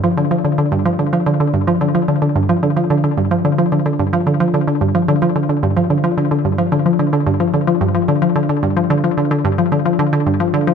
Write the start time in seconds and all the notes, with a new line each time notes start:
0.04 F3
0.17 D3
0.31 F3
0.45 D3
0.58 D3
0.72 G2
0.86 F3
0.99 D3
1.13 F3
1.26 D3
1.40 D3
1.54 G2
1.67 F3
1.81 D3
1.95 F3
2.08 D3
2.22 D3
2.36 G2
2.49 F3
2.63 D3
2.77 F3
2.90 D3
3.04 D3
3.18 G2
3.31 F3
3.45 D3
3.58 F3
3.72 D3
3.86 D3
3.99 G2
4.13 F3
4.27 D3
4.40 F3
4.54 D3
4.68 D3
4.81 G2
4.95 F3
5.08 D3
5.22 F3
5.36 D3
5.49 D3
5.63 G2
5.77 F3
5.90 D3
6.04 F3
6.18 D3
6.31 D3
6.45 G2
6.58 F3
6.72 D3
6.86 F3
6.99 D3
7.13 D3
7.27 G2
7.40 F3
7.54 D3
7.67 F3
7.81 G2
7.95 F3
8.08 D3
8.22 F3
8.36 D3
8.49 D3
8.63 G2
8.77 F3
8.90 D3
9.04 F3
9.18 D3
9.31 D3
9.45 G2
9.58 F3
9.72 D3
9.85 F3
9.99 D3
10.13 D3
10.26 G2
10.40 F3
10.54 D3
10.67 F3